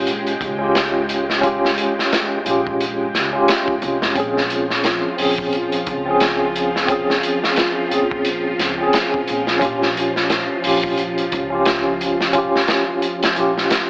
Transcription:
0.00 0.38 A#1 medium
0.00 4.18 G#3 medium
0.00 0.59 C#4 medium
0.00 0.61 F4 medium
0.00 0.64 G4 medium
0.00 4.18 G5 medium
0.07 closed hi-hat medium
0.27 closed hi-hat soft
0.41 1.75 C#2 medium
0.41 kick loud
0.41 closed hi-hat medium
0.59 1.39 C#4 medium
0.59 1.40 F4 medium
0.64 1.41 G4 loud
0.75 snare loud
0.75 closed hi-hat medium
1.09 closed hi-hat medium
1.30 snare soft
1.41 2.41 C#4 medium
1.41 2.42 F4 medium
1.41 kick loud
1.41 closed hi-hat medium
1.46 2.44 G4 medium
1.65 snare soft
1.78 closed hi-hat medium
1.99 snare soft
2.12 snare loud
2.12 closed hi-hat medium
2.45 3.11 A#1 medium
2.45 3.29 C#4 medium
2.45 3.30 F4 medium
2.45 closed hi-hat medium
2.50 3.32 G4 medium
2.67 kick medium
2.81 closed hi-hat medium
3.14 3.32 C#2 medium
3.14 snare soft
3.14 closed hi-hat medium
3.33 4.12 C#4 medium
3.33 4.13 F4 medium
3.38 4.15 G4 medium
3.48 snare loud
3.48 closed hi-hat loud
3.68 kick loud
3.82 4.00 C2 medium
3.82 closed hi-hat medium
4.02 4.15 F1 medium
4.02 snare medium
4.15 5.00 A#1 loud
4.15 13.90 F3 medium
4.15 5.14 C4 medium
4.15 5.16 C#4 medium
4.15 13.90 F4 medium
4.15 kick loud
4.15 closed hi-hat medium
4.20 5.17 G#4 medium
4.37 snare soft
4.50 closed hi-hat medium
4.70 snare soft
4.84 snare loud
4.84 closed hi-hat medium
5.17 5.84 A#1 medium
5.17 6.02 C4 medium
5.17 6.03 C#4 medium
5.17 open hi-hat medium
5.22 6.05 G#4 medium
5.38 kick loud
5.53 closed hi-hat medium
5.72 closed hi-hat soft
5.87 7.21 C#2 medium
5.87 kick loud
5.87 closed hi-hat medium
6.05 6.85 C4 medium
6.05 6.86 C#4 medium
6.11 6.87 G#4 loud
6.20 snare loud
6.20 closed hi-hat medium
6.56 closed hi-hat medium
6.76 snare soft
6.87 7.87 C4 medium
6.87 7.88 C#4 medium
6.87 kick loud
6.87 closed hi-hat loud
6.92 7.89 G#4 medium
7.10 snare soft
7.23 closed hi-hat medium
7.44 snare soft
7.56 snare loud
7.56 closed hi-hat medium
7.89 8.57 A#1 medium
7.89 8.74 C4 medium
7.89 8.75 C#4 medium
7.89 closed hi-hat medium
7.93 8.77 G#4 medium
8.11 kick loud
8.25 closed hi-hat medium
8.59 8.77 C#2 medium
8.59 snare soft
8.59 closed hi-hat medium
8.78 9.57 C4 medium
8.78 9.58 C#4 medium
8.83 9.60 G#4 loud
8.93 snare loud
8.93 closed hi-hat medium
9.14 kick medium
9.28 9.59 A#1 medium
9.28 closed hi-hat medium
9.47 snare medium
9.59 10.46 A#1 loud
9.59 10.59 C#4 medium
9.59 10.61 F4 medium
9.59 kick loud
9.59 closed hi-hat medium
9.65 10.62 G4 medium
9.82 snare soft
9.97 closed hi-hat medium
10.16 snare soft
10.30 snare loud
10.30 closed hi-hat medium
10.62 11.30 A#1 medium
10.62 11.47 C#4 medium
10.62 11.48 F4 medium
10.62 open hi-hat medium
10.67 11.50 G4 medium
10.84 kick loud
10.97 closed hi-hat medium
11.18 closed hi-hat soft
11.32 12.66 C#2 medium
11.32 kick loud
11.32 closed hi-hat medium
11.50 12.30 C#4 medium
11.50 12.31 F4 medium
11.55 12.32 G4 loud
11.65 snare loud
11.65 closed hi-hat medium
12.01 closed hi-hat medium
12.21 snare medium
12.33 13.33 C#4 medium
12.33 13.34 F4 medium
12.33 kick loud
12.33 closed hi-hat medium
12.38 13.35 G4 loud
12.56 snare soft
12.68 snare loud
12.68 closed hi-hat medium
13.02 closed hi-hat medium
13.23 snare medium
13.23 closed hi-hat medium
13.35 13.70 A#1 medium
13.35 13.90 C#4 medium
13.35 13.90 F4 medium
13.35 closed hi-hat medium
13.40 13.90 G4 medium
13.58 snare soft
13.70 snare loud
13.70 closed hi-hat medium

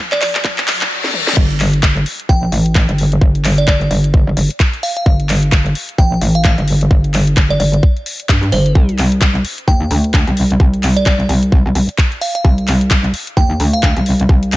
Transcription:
0.00 riser medium
0.12 0.18 D5 medium
0.12 clap medium
0.12 closed hi-hat soft
0.21 0.30 D5 medium
0.21 clap loud
0.21 open hi-hat loud
0.35 clap medium
0.35 closed hi-hat medium
0.45 kick loud
0.45 clap loud
0.45 reverse cymbal medium
0.58 clap medium
0.68 clap loud
0.68 open hi-hat loud
0.81 clap loud
0.81 closed hi-hat medium
1.04 snare medium
1.14 mid tom medium
1.27 snare medium
1.37 1.81 G1 medium
1.37 kick loud
1.37 crash loud
1.50 closed hi-hat medium
1.60 clap medium
1.60 open hi-hat loud
1.74 closed hi-hat medium
1.83 2.05 G1 loud
1.83 kick loud
1.83 clap loud
1.97 closed hi-hat soft
2.06 open hi-hat medium
2.20 closed hi-hat medium
2.29 2.51 A#1 loud
2.29 2.45 G5 medium
2.29 kick loud
2.52 2.87 A1 loud
2.52 open hi-hat loud
2.66 closed hi-hat medium
2.75 kick loud
2.75 clap loud
2.89 3.20 G1 loud
2.89 closed hi-hat medium
2.98 open hi-hat medium
3.12 closed hi-hat medium
3.21 3.66 G1 medium
3.21 kick loud
3.35 closed hi-hat medium
3.45 clap medium
3.45 open hi-hat loud
3.58 3.64 D5 medium
3.58 closed hi-hat medium
3.68 3.89 G1 medium
3.68 3.76 D5 medium
3.68 kick loud
3.68 clap loud
3.81 closed hi-hat soft
3.91 4.25 G1 medium
3.91 open hi-hat medium
4.04 closed hi-hat medium
4.14 kick loud
4.27 4.35 G1 loud
4.37 4.48 G1 loud
4.37 open hi-hat loud
4.50 closed hi-hat medium
4.60 kick loud
4.60 clap loud
4.74 closed hi-hat medium
4.83 4.92 F5 medium
4.83 open hi-hat loud
4.97 5.03 F5 medium
4.97 closed hi-hat medium
5.06 5.51 G1 loud
5.06 kick loud
5.20 closed hi-hat medium
5.29 clap medium
5.29 open hi-hat loud
5.43 closed hi-hat medium
5.52 5.74 G1 loud
5.52 kick loud
5.52 clap loud
5.66 closed hi-hat soft
5.75 open hi-hat medium
5.89 closed hi-hat medium
5.98 6.20 A#1 loud
5.98 6.14 G5 medium
5.98 kick loud
6.21 6.56 A1 loud
6.21 open hi-hat loud
6.35 6.48 F5 medium
6.35 closed hi-hat medium
6.45 kick loud
6.45 clap loud
6.58 6.89 G1 loud
6.58 closed hi-hat soft
6.68 open hi-hat loud
6.81 closed hi-hat medium
6.91 7.35 G1 loud
6.91 kick loud
7.04 closed hi-hat medium
7.14 clap medium
7.14 open hi-hat loud
7.27 closed hi-hat medium
7.37 7.58 G1 loud
7.37 kick loud
7.37 clap loud
7.50 7.57 D5 medium
7.50 closed hi-hat soft
7.60 7.82 G1 loud
7.60 7.69 D5 medium
7.60 open hi-hat medium
7.74 closed hi-hat medium
7.83 kick loud
7.97 closed hi-hat soft
8.06 open hi-hat loud
8.20 closed hi-hat medium
8.29 8.51 G2 loud
8.29 kick loud
8.29 clap loud
8.43 closed hi-hat medium
8.52 8.74 G1 loud
8.52 8.81 C5 medium
8.52 open hi-hat medium
8.66 closed hi-hat medium
8.75 9.20 C2 medium
8.75 kick loud
8.89 closed hi-hat medium
8.98 clap medium
8.98 open hi-hat loud
9.12 closed hi-hat medium
9.21 9.43 C2 loud
9.21 kick loud
9.21 clap loud
9.35 closed hi-hat soft
9.45 open hi-hat medium
9.58 closed hi-hat medium
9.68 9.89 D#2 loud
9.68 9.84 G5 medium
9.68 kick loud
9.91 10.25 D2 loud
9.91 open hi-hat loud
10.04 closed hi-hat medium
10.14 kick loud
10.14 clap loud
10.27 10.58 C2 loud
10.27 closed hi-hat medium
10.37 open hi-hat medium
10.51 closed hi-hat medium
10.60 11.05 C2 medium
10.60 kick loud
10.74 closed hi-hat medium
10.83 clap medium
10.83 open hi-hat loud
10.97 11.03 D5 medium
10.97 closed hi-hat medium
11.06 11.28 C2 loud
11.06 11.15 D5 medium
11.06 kick loud
11.06 clap loud
11.20 closed hi-hat soft
11.29 11.64 C2 loud
11.29 open hi-hat medium
11.43 closed hi-hat medium
11.52 kick loud
11.66 11.74 C2 loud
11.75 11.87 C2 loud
11.75 open hi-hat loud
11.89 closed hi-hat medium
11.98 kick loud
11.98 clap loud
12.12 closed hi-hat medium
12.21 12.30 F5 medium
12.21 open hi-hat medium
12.35 12.41 F5 medium
12.35 closed hi-hat medium
12.45 12.89 C2 medium
12.45 kick loud
12.58 closed hi-hat medium
12.68 clap medium
12.68 open hi-hat loud
12.81 closed hi-hat medium
12.91 13.12 C2 loud
12.91 kick loud
12.91 clap loud
13.04 closed hi-hat soft
13.14 open hi-hat medium
13.27 closed hi-hat medium
13.37 13.58 D#2 loud
13.37 13.53 G5 loud
13.37 kick loud
13.60 13.94 D2 loud
13.60 open hi-hat loud
13.73 13.86 F5 medium
13.73 closed hi-hat medium
13.83 kick loud
13.83 clap loud
13.97 14.28 C2 loud
13.97 closed hi-hat medium
14.06 open hi-hat medium
14.20 closed hi-hat medium
14.29 14.57 C2 medium
14.29 kick loud
14.43 closed hi-hat medium
14.52 clap medium
14.52 open hi-hat loud

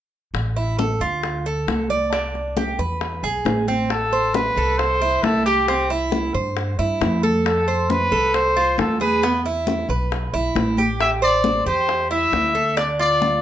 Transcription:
0.34 0.97 A1 medium
0.34 high bongo medium
0.34 high conga soft
0.56 0.78 E4 medium
0.56 high conga soft
0.79 1.00 A4 medium
0.79 high bongo medium
0.79 high conga medium
1.00 1.64 D2 medium
1.00 1.44 F4 medium
1.00 high conga soft
1.23 high bongo medium
1.23 high conga soft
1.46 1.89 A4 medium
1.46 high conga soft
1.67 2.73 C2 medium
1.67 high bongo medium
1.67 low bongo medium
1.67 high conga medium
1.90 2.12 D5 medium
1.90 high conga medium
2.12 2.56 D4 medium
2.12 high bongo medium
2.12 high conga soft
2.34 high bongo soft
2.34 high conga soft
2.57 2.78 G4 medium
2.57 high bongo medium
2.57 high conga medium
2.79 3.20 E2 medium
2.79 3.22 B4 medium
2.79 high bongo soft
2.79 high conga soft
3.01 high bongo medium
3.01 high conga soft
3.23 3.44 B1 medium
3.23 3.67 G#4 medium
3.23 high bongo soft
3.23 high conga soft
3.45 4.51 A1 medium
3.45 high bongo medium
3.45 low bongo medium
3.45 high conga medium
3.68 3.90 C4 medium
3.68 high conga medium
3.90 4.36 A4 medium
3.90 high bongo medium
3.90 high conga soft
4.12 4.56 C5 medium
4.12 high conga soft
4.34 4.79 B4 medium
4.34 high bongo medium
4.34 high conga medium
4.57 5.19 C2 medium
4.57 5.00 A4 medium
4.57 high conga soft
4.78 5.24 C5 medium
4.78 high bongo medium
4.78 high conga soft
5.01 5.45 E4 medium
5.01 high conga soft
5.23 6.28 C2 medium
5.23 5.45 A4 medium
5.23 high bongo medium
5.23 low bongo medium
5.23 high conga medium
5.45 5.87 G4 medium
5.45 5.68 G4 medium
5.68 5.90 C4 medium
5.68 high bongo medium
5.68 high conga soft
5.90 6.33 E4 medium
5.90 high bongo soft
5.90 high conga soft
6.12 high bongo medium
6.12 high conga medium
6.34 6.76 G2 medium
6.34 6.78 C5 medium
6.34 high bongo soft
6.34 high conga soft
6.57 high bongo medium
6.57 high conga soft
6.79 7.00 G2 medium
6.79 7.22 E4 medium
6.79 high bongo soft
6.79 high conga soft
7.01 8.06 F2 medium
7.01 high bongo medium
7.01 low bongo medium
7.01 high conga medium
7.23 7.66 A4 medium
7.23 high conga medium
7.46 7.91 A4 medium
7.46 high bongo medium
7.46 high conga soft
7.68 8.11 C5 medium
7.68 high conga soft
7.90 8.35 B4 medium
7.90 high bongo medium
7.90 high conga medium
8.12 8.74 C2 medium
8.12 8.55 A4 medium
8.12 high conga soft
8.34 8.78 C5 loud
8.34 high bongo medium
8.34 high conga soft
8.56 9.00 F4 medium
8.56 high conga soft
8.78 9.83 E2 medium
8.78 8.99 A4 medium
8.78 high bongo medium
8.78 low bongo medium
8.78 high conga medium
9.00 9.22 G#4 medium
9.00 9.42 B4 loud
9.00 high conga medium
9.23 9.45 B3 medium
9.23 high bongo medium
9.23 high conga soft
9.45 9.88 E4 medium
9.45 high bongo soft
9.45 high conga soft
9.67 high bongo medium
9.67 high conga medium
9.89 10.30 B1 medium
9.89 10.33 B4 medium
9.89 high bongo soft
10.11 high bongo medium
10.11 high conga soft
10.33 10.54 B1 medium
10.33 10.77 E4 medium
10.33 high bongo soft
10.33 high conga soft
10.55 11.60 A1 medium
10.55 high bongo medium
10.55 low bongo medium
10.55 high conga medium
10.77 11.21 G4 medium
10.77 high conga medium
10.99 11.10 E5 loud
10.99 high bongo medium
10.99 high conga soft
11.22 11.65 C5 medium
11.22 11.64 D5 loud
11.22 high conga soft
11.44 high bongo medium
11.44 high conga medium
11.66 12.29 E2 medium
11.66 12.09 G4 medium
11.66 12.08 C5 loud
11.66 high conga soft
11.89 high bongo medium
11.89 high conga soft
12.11 12.54 E4 medium
12.11 12.73 E5 medium
12.11 high conga soft
12.32 13.37 D2 medium
12.32 high bongo medium
12.32 low bongo medium
12.32 high conga medium
12.55 12.76 A4 medium
12.55 high conga medium
12.77 12.98 D4 medium
12.77 12.88 D5 medium
12.77 high bongo medium
12.77 high conga soft
12.99 13.42 F4 medium
12.99 13.42 D5 loud
12.99 high bongo soft
12.99 high conga soft
13.22 high bongo medium
13.22 high conga medium

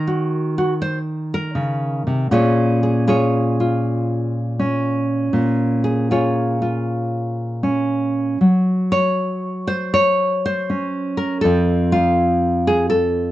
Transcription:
0.00 2.31 D#3 medium
0.00 0.81 A#4 medium
0.07 0.57 F#4 soft
0.58 0.72 F#4 medium
0.82 0.98 C5 medium
1.34 2.32 A#4 medium
1.55 2.06 C#3 medium
2.07 2.31 C3 soft
2.31 5.32 A#2 medium
2.31 4.59 C#4 medium
2.31 3.07 F4 medium
2.31 2.83 G#4 medium
2.31 3.09 C#5 medium
2.83 3.08 G#4 medium
3.08 3.60 F4 medium
3.08 5.31 G#4 medium
3.08 6.11 C#5 medium
3.60 6.11 F4 soft
4.59 7.63 C#4 medium
5.33 8.40 A#2 medium
5.84 6.09 G#4 medium
6.11 6.61 F4 medium
6.11 8.38 G#4 soft
6.11 8.38 C#5 medium
6.62 8.44 F4 medium
7.63 8.38 C#4 medium
8.41 11.43 F#3 medium
8.92 9.92 C#5 medium
9.67 10.44 C5 medium
9.94 11.20 C#5 medium
10.46 11.17 C5 medium
10.70 11.42 C#4 medium
11.17 11.41 A#4 medium
11.41 13.32 F2 medium
11.41 13.32 C4 soft
11.41 12.67 A4 medium
11.45 11.92 F4 soft
11.92 13.32 F4 medium
12.67 12.89 G#4 medium
12.90 13.32 A4 medium

